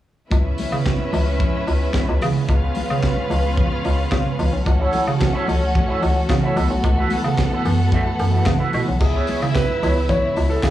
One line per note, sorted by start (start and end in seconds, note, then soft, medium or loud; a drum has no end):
0.30 0.52 C#2 loud
0.30 2.46 C#3 medium
0.30 4.62 G#3 medium
0.30 4.62 B3 medium
0.30 2.45 C#4 medium
0.30 2.46 E4 medium
0.30 2.45 B4 medium
0.30 2.45 E5 medium
0.30 kick loud
0.30 closed hi-hat medium
0.30 muted conga soft
0.58 open hi-hat medium
0.58 muted conga soft
0.58 high conga medium
0.72 0.82 C#3 medium
0.86 kick medium
0.86 snare loud
0.86 clap medium
0.86 muted conga soft
0.99 high conga medium
1.13 1.43 C#2 loud
1.13 open hi-hat medium
1.13 muted conga soft
1.13 high conga medium
1.13 low conga medium
1.39 kick loud
1.39 closed hi-hat medium
1.39 muted conga soft
1.39 low conga medium
1.67 1.87 C#2 medium
1.67 open hi-hat soft
1.67 muted conga soft
1.93 kick medium
1.93 snare loud
1.93 clap medium
1.93 closed hi-hat medium
1.93 high conga medium
2.09 2.19 C#2 medium
2.21 2.42 C#3 loud
2.21 open hi-hat medium
2.21 high conga medium
2.21 low conga medium
2.49 2.69 C#2 loud
2.49 4.64 C#3 medium
2.49 4.62 C#4 medium
2.49 4.64 F4 medium
2.49 4.62 B4 medium
2.49 4.62 F5 medium
2.49 kick loud
2.49 closed hi-hat medium
2.75 open hi-hat medium
2.75 muted conga soft
2.75 high conga medium
2.90 3.00 C#3 medium
3.03 kick loud
3.03 snare loud
3.03 clap medium
3.03 closed hi-hat medium
3.03 muted conga soft
3.17 high conga medium
3.30 3.60 C#2 medium
3.30 open hi-hat medium
3.30 high conga medium
3.30 low conga medium
3.57 kick loud
3.57 closed hi-hat medium
3.57 muted conga soft
3.57 low conga medium
3.85 4.05 C#2 medium
3.85 open hi-hat medium
3.85 muted conga soft
4.12 4.22 C#3 medium
4.12 kick loud
4.12 snare loud
4.12 clap medium
4.12 closed hi-hat medium
4.12 muted conga soft
4.12 high conga medium
4.39 4.49 C#2 loud
4.39 open hi-hat medium
4.39 muted conga soft
4.39 high conga medium
4.39 low conga medium
4.53 4.63 B1 medium
4.64 4.86 C#2 loud
4.64 6.53 E3 medium
4.64 8.96 A3 medium
4.64 6.54 C#4 medium
4.64 6.52 C#4 medium
4.64 8.96 F#4 medium
4.64 6.52 A4 medium
4.64 6.52 F#5 medium
4.64 muted clean electric guitar stroke soft
4.64 kick loud
4.64 closed hi-hat medium
4.64 muted conga soft
4.79 4.91 E4 medium
4.79 4.91 A4 medium
4.79 4.92 C#5 medium
4.79 4.93 E5 medium
4.92 5.06 E4 medium
4.92 5.06 A4 medium
4.92 5.05 C#5 medium
4.92 5.06 F#5 medium
4.92 open hi-hat medium
4.92 high conga medium
5.06 5.17 C#3 loud
5.06 muted clean electric guitar stroke soft
5.20 muted clean electric guitar stroke soft
5.20 kick loud
5.20 snare loud
5.20 clap medium
5.20 closed hi-hat medium
5.20 muted conga soft
5.33 5.47 E4 medium
5.33 5.47 A4 medium
5.33 5.48 C#5 medium
5.33 5.48 E5 medium
5.33 high conga medium
5.48 5.78 C#2 medium
5.48 open hi-hat medium
5.48 muted conga soft
5.48 high conga medium
5.48 low conga medium
5.63 muted clean electric guitar stroke soft
5.75 muted clean electric guitar stroke soft
5.75 kick loud
5.75 closed hi-hat medium
5.75 muted conga soft
5.75 low conga medium
5.88 6.01 E4 medium
5.88 6.02 A4 medium
5.88 6.02 C#5 medium
5.88 6.03 E5 medium
6.02 6.22 C#2 medium
6.02 muted clean electric guitar stroke soft
6.02 open hi-hat medium
6.02 muted conga soft
6.17 muted clean electric guitar stroke medium
6.29 6.40 C#3 loud
6.29 muted clean electric guitar stroke soft
6.29 kick loud
6.29 snare loud
6.29 clap medium
6.29 closed hi-hat medium
6.29 high conga medium
6.44 6.55 E4 medium
6.44 6.56 A4 medium
6.44 6.58 C#5 medium
6.44 6.57 E5 medium
6.56 6.66 C#2 loud
6.56 8.99 E3 medium
6.56 8.97 B3 medium
6.56 8.99 B3 medium
6.56 6.69 E4 medium
6.56 8.97 A4 medium
6.56 6.70 A4 medium
6.56 6.70 B4 medium
6.56 6.69 E5 medium
6.56 8.97 F#5 medium
6.56 open hi-hat medium
6.56 muted conga soft
6.56 high conga medium
6.56 low conga medium
6.70 6.80 B1 medium
6.70 muted clean electric guitar stroke soft
6.82 7.04 C#2 loud
6.82 muted clean electric guitar stroke soft
6.82 kick loud
6.82 closed hi-hat medium
6.82 muted conga soft
6.98 7.10 E4 medium
6.98 7.11 A4 medium
6.98 7.11 B4 medium
6.98 7.13 E5 medium
7.10 7.24 E4 medium
7.10 7.25 A4 medium
7.10 7.24 B4 medium
7.10 7.25 F#5 medium
7.10 open hi-hat medium
7.10 muted conga soft
7.10 high conga medium
7.24 7.34 C#3 medium
7.24 muted clean electric guitar stroke soft
7.38 muted clean electric guitar stroke soft
7.38 kick medium
7.38 snare loud
7.38 clap medium
7.38 closed hi-hat medium
7.38 muted conga soft
7.51 7.65 E4 medium
7.51 7.65 A4 medium
7.51 7.66 B4 medium
7.51 7.66 E5 medium
7.51 high conga medium
7.65 7.95 F#2 medium
7.65 muted clean electric guitar stroke soft
7.65 open hi-hat medium
7.65 muted conga soft
7.65 high conga medium
7.65 low conga medium
7.80 muted clean electric guitar stroke soft
7.92 8.09 E4 medium
7.92 8.07 A4 medium
7.92 8.07 B4 medium
7.92 8.06 E5 medium
7.92 kick loud
7.92 closed hi-hat medium
7.92 low conga medium
8.07 muted clean electric guitar stroke soft
8.19 8.40 F#2 medium
8.19 muted clean electric guitar stroke soft
8.19 open hi-hat medium
8.32 8.45 E4 soft
8.32 8.45 A4 soft
8.32 8.46 B4 soft
8.32 8.45 E5 medium
8.46 8.56 C#3 loud
8.46 muted clean electric guitar stroke soft
8.46 kick medium
8.46 snare loud
8.46 clap medium
8.46 closed hi-hat medium
8.46 muted conga soft
8.46 high conga medium
8.58 8.71 E4 medium
8.58 8.72 A4 medium
8.58 8.72 B4 medium
8.58 8.73 E5 medium
8.72 8.84 B2 loud
8.72 8.86 E4 medium
8.72 8.86 A4 medium
8.72 8.86 B4 medium
8.72 8.85 E5 medium
8.72 open hi-hat medium
8.72 muted conga soft
8.72 high conga medium
8.72 low conga medium
8.87 8.98 B1 medium
8.87 muted clean electric guitar stroke soft
9.00 9.21 C#2 loud
9.00 10.70 C#3 medium
9.00 10.70 G#3 medium
9.00 10.70 B3 medium
9.00 10.70 E4 medium
9.00 10.70 E4 loud
9.00 9.57 G#4 medium
9.00 10.70 E5 medium
9.00 muted clean electric guitar stroke soft
9.00 kick loud
9.00 crash medium
9.00 tambourine soft
9.15 9.27 B3 medium
9.15 9.28 E4 medium
9.15 9.29 G#4 medium
9.15 9.29 C#5 medium
9.27 9.41 B3 medium
9.27 9.41 E4 medium
9.27 9.42 G#4 medium
9.27 9.41 C#5 medium
9.27 open hi-hat medium
9.27 tambourine medium
9.27 muted conga soft
9.27 high conga medium
9.42 9.52 C#3 medium
9.42 muted clean electric guitar stroke soft
9.42 tambourine soft
9.55 10.11 B4 loud
9.55 muted clean electric guitar stroke soft
9.55 kick loud
9.55 snare loud
9.55 clap medium
9.55 closed hi-hat medium
9.55 tambourine medium
9.55 muted conga soft
9.69 muted clean electric guitar stroke soft
9.69 high conga medium
9.82 10.13 C#2 loud
9.82 9.99 B3 medium
9.82 9.96 E4 medium
9.82 9.96 G#4 medium
9.82 9.95 C#5 medium
9.82 open hi-hat medium
9.82 tambourine soft
9.82 muted conga soft
9.82 high conga medium
9.82 low conga medium
9.96 muted clean electric guitar stroke soft
10.09 10.51 C#5 loud
10.09 muted clean electric guitar stroke soft
10.09 kick medium
10.09 closed hi-hat medium
10.09 tambourine medium
10.09 muted conga soft
10.09 low conga medium
10.25 muted clean electric guitar stroke soft
10.36 10.57 C#2 medium
10.36 open hi-hat soft
10.36 tambourine soft
10.36 muted conga soft
10.50 10.64 A4 medium
10.50 muted clean electric guitar stroke soft
10.50 tambourine soft
10.63 10.70 C#3 medium
10.63 10.70 G#4 medium
10.63 muted clean electric guitar stroke soft
10.63 kick loud
10.63 snare loud
10.63 clap medium
10.63 closed hi-hat medium
10.63 tambourine loud
10.63 muted conga soft
10.63 high conga medium